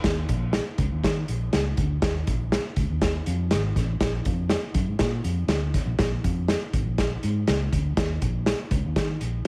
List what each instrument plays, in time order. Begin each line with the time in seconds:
0.04 fingered electric bass D#2, kick, snare, closed hi-hat
0.29 fingered electric bass A#1, kick, closed hi-hat
0.53 snare, closed hi-hat
0.78 fingered electric bass C#2, kick, closed hi-hat
0.92 fingered electric bass D#2
1.03 fingered electric bass D#3, kick, snare, closed hi-hat
1.28 fingered electric bass A#1, closed hi-hat
1.53 fingered electric bass C#2, snare, closed hi-hat
1.77 fingered electric bass D2, kick, closed hi-hat
2.02 fingered electric bass D#2, kick, snare, closed hi-hat
2.27 fingered electric bass A#1, kick, closed hi-hat
2.52 snare, closed hi-hat
2.76 fingered electric bass C#2, kick, closed hi-hat
2.90 fingered electric bass D#2
3.01 kick, snare, closed hi-hat
3.26 fingered electric bass F2, closed hi-hat
3.51 fingered electric bass G#1, snare, closed hi-hat
3.76 fingered electric bass A1, kick, snare, closed hi-hat
4.00 fingered electric bass A#1, kick, snare, closed hi-hat
4.25 fingered electric bass F2, kick, closed hi-hat
4.49 snare, closed hi-hat
4.74 fingered electric bass F#2, kick, closed hi-hat
4.88 fingered electric bass G#2
4.99 fingered electric bass A#2, kick, snare, closed hi-hat
5.24 fingered electric bass F2, closed hi-hat
5.48 fingered electric bass D2, snare, closed hi-hat
5.74 kick, snare, closed hi-hat
5.86 fingered electric bass A#1
5.99 fingered electric bass A#1, kick, snare, closed hi-hat
6.24 fingered electric bass F2, kick, closed hi-hat
6.48 snare, closed hi-hat
6.73 fingered electric bass G#1, kick, closed hi-hat
6.86 fingered electric bass A#1
6.98 kick, snare, closed hi-hat
7.23 fingered electric bass G#2, closed hi-hat
7.47 fingered electric bass C#2, snare, closed hi-hat
7.73 fingered electric bass D2, kick, closed hi-hat
7.97 fingered electric bass D#2, kick, snare, closed hi-hat
8.22 fingered electric bass A#1, kick, closed hi-hat
8.46 snare, closed hi-hat
8.71 fingered electric bass C#2, kick, closed hi-hat
8.85 fingered electric bass D#2
8.96 fingered electric bass D#3, kick, snare, closed hi-hat
9.21 fingered electric bass A#1, closed hi-hat